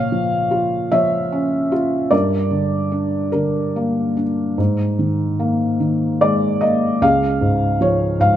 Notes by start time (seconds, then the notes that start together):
Already playing: A#2 C#5 F5
0.12 F3
0.51 F4
0.92 F3 C#5 E5
1.32 C#4
1.72 F4
2.11 G2 A#4 D5
2.51 D3
2.92 D4
3.32 D3 A#4
3.76 A#3
4.17 D4
4.58 G#2
4.99 D#3
5.39 A#3
5.80 D#3
6.21 G#3 D5
6.61 A#3 D#5
7.01 C#2 G#4 F5
7.41 G#2
7.81 F3 C#5
8.20 G#2 F5